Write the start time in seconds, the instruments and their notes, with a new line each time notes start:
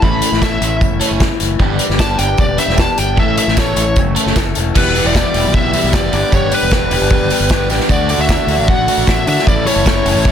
Already playing: analog synth pad E5
0.02 fingered electric bass A1, clean electric guitar A2 E3 A3 C#4 E4, analog synth pad A4 C#5 C#6, overdriven electric guitar A4, lead electric guitar B5, kick, tambourine
0.22 closed hi-hat, tambourine
0.32 fingered electric bass A1, snare
0.42 clean electric guitar A2 E3 A3 C#4 E4, overdriven electric guitar A4, lead electric guitar E5, kick, snare, tambourine
0.61 fingered electric bass A1, clean electric guitar A3 C#4 E4, closed hi-hat, tambourine
0.81 fingered electric bass F#1, kick, tambourine
1.00 overdriven electric guitar E3 A3 C#4 A4, closed hi-hat, tambourine
1.11 fingered electric bass F#1
1.19 clean electric guitar E3 A3 C#4 E4, kick, snare, tambourine
1.40 fingered electric bass F#1, clean electric guitar A3 C#4 E4, closed hi-hat
1.58 fingered electric bass G1, clean electric guitar G2 D3 G3 B3 D4 G4, analog synth pad B4 D5 G5 D6, kick, tambourine
1.79 closed hi-hat, tambourine
1.89 fingered electric bass G1, snare
1.99 clean electric guitar G2 D3 G3 B3 D4 G4, lead electric guitar A5, kick, snare, tambourine
2.18 fingered electric bass G1, clean electric guitar G3 B3 D4 G4, lead electric guitar G5, closed hi-hat, tambourine
2.37 fingered electric bass E1, lead electric guitar D5, kick, tambourine
2.58 overdriven electric guitar B3 D4 G4, lead electric guitar E5, closed hi-hat, tambourine
2.68 fingered electric bass E1, snare
2.77 clean electric guitar G3 B3 D4 G4, lead electric guitar A5, kick, snare, tambourine
2.97 fingered electric bass G1, clean electric guitar G3 B3 D4 G4, lead electric guitar G5, closed hi-hat, tambourine
3.16 fingered electric bass A1, clean electric guitar A2 E3 A3 C#4 A4, analog synth pad A4 C#5 E5 C#6, lead electric guitar E5, kick, tambourine
3.38 lead electric guitar E5, closed hi-hat, tambourine
3.47 fingered electric bass A1, snare
3.56 clean electric guitar A2 E3 A3 C#4 A4, lead electric guitar C#5, kick, snare, tambourine
3.76 fingered electric bass A1, clean electric guitar A3 C#4 A4, closed hi-hat, tambourine
3.96 fingered electric bass F#1, kick, tambourine
4.15 overdriven electric guitar E3 A3 C#4 A4, closed hi-hat
4.26 fingered electric bass F#1, snare
4.36 fingered electric bass F#1, clean electric guitar E3 A3 C#4 A4, kick, snare, tambourine
4.55 fingered electric bass E1, clean electric guitar A3 C#4 A4, closed hi-hat, tambourine
4.75 fingered electric bass E1, clean electric guitar E2 B2 E3 G3 B3 G4, overdriven electric guitar E4, analog synth pad G4 B4 E5 B5, lead electric guitar B4, kick, crash, tambourine
4.95 clean electric guitar E2 B2 E3 G3 B3 G4, overdriven electric guitar E4, open hi-hat, tambourine
5.05 fingered electric bass E1, lead electric guitar D5
5.15 clean electric guitar E2 B2 E3 G3 B3 G4, overdriven electric guitar E4, kick, snare, tambourine
5.34 fingered electric bass E1, clean electric guitar E2 B2 E3 G3 B3 G4, overdriven electric guitar E4, open hi-hat, tambourine
5.45 fingered electric bass B1
5.54 clean electric guitar E2 B2 E3 G3 B3 G4, overdriven electric guitar E4, lead electric guitar E5, kick
5.65 fingered electric bass B1
5.73 clean electric guitar E2 B2 E3 G3 B3 G4, overdriven electric guitar E4, open hi-hat, tambourine
5.84 fingered electric bass B1
5.93 fingered electric bass F#1, clean electric guitar E2 B2 E3 G3 B3 G4, overdriven electric guitar E4, lead electric guitar D5, kick, snare, tambourine
6.12 fingered electric bass G1, clean electric guitar G2 D3 G3 B3 D4 G4, analog synth pad D5, open hi-hat, tambourine
6.32 fingered electric bass G1, clean electric guitar G2 D3 G3 B3 D4 G4, lead electric guitar C#5, kick, tambourine
6.51 clean electric guitar G2 D3 G3 B3 D4 G4, lead electric guitar B4, open hi-hat, tambourine
6.62 fingered electric bass E1
6.70 clean electric guitar G2 D3 G3 B3 D4 G4, kick, snare, tambourine
6.91 fingered electric bass E1, clean electric guitar G2 D3 G3 B3 D4 G4, open hi-hat, tambourine
7.01 fingered electric bass G1
7.11 clean electric guitar G2 D3 G3 B3 D4 G4, kick
7.21 fingered electric bass G1
7.30 clean electric guitar G2 D3 G3 B3 D4 G4, open hi-hat, tambourine
7.40 fingered electric bass G1
7.49 clean electric guitar G2 D3 G3 B3 D4 G4, kick, snare, tambourine
7.69 fingered electric bass A1, clean electric guitar G2 D3 G3 B3 D4 G4, snare, open hi-hat, tambourine
7.80 snare
7.89 fingered electric bass D2, clean electric guitar D3 A3 D4 F#4, analog synth pad F#4 A4 D5 A5, lead electric guitar D5, kick, tambourine
8.09 clean electric guitar D3 A3 D4 F#4, open hi-hat, tambourine
8.18 fingered electric bass D2, lead electric guitar E5
8.29 clean electric guitar D3 A3 D4 F#4, kick, snare, tambourine
8.47 fingered electric bass D2, clean electric guitar D3 A3 D4 F#4, open hi-hat, tambourine
8.57 fingered electric bass A1
8.68 clean electric guitar D3 A3 D4 F#4, lead electric guitar F#5, kick
8.77 fingered electric bass A1
8.88 clean electric guitar D3 A3 D4 F#4, open hi-hat, tambourine
8.97 fingered electric bass A1
9.07 fingered electric bass A1, clean electric guitar D3 A3 D4 F#4, lead electric guitar E5, kick, snare, tambourine
9.26 clean electric guitar D3 A3 D4 F#4, fingered electric bass D3, lead electric guitar E5, open hi-hat, tambourine
9.39 snare
9.46 fingered electric bass A1, clean electric guitar A2 E3 A3 C#4 E4, analog synth pad E4 C#5, overdriven electric guitar A4, lead electric guitar D5, kick, tambourine
9.66 clean electric guitar A2 E3 A3 C#4 E4, overdriven electric guitar A4, lead electric guitar C#5, open hi-hat, tambourine
9.76 fingered electric bass F#1
9.86 clean electric guitar A2 E3 A3 C#4 E4, overdriven electric guitar A4, kick, snare, tambourine
10.05 fingered electric bass F#1, clean electric guitar A2 E3 A3 C#4 E4, overdriven electric guitar A4, open hi-hat, tambourine
10.15 fingered electric bass A1
10.25 clean electric guitar A2 E3 A3 C#4 E4, overdriven electric guitar A4, kick, tambourine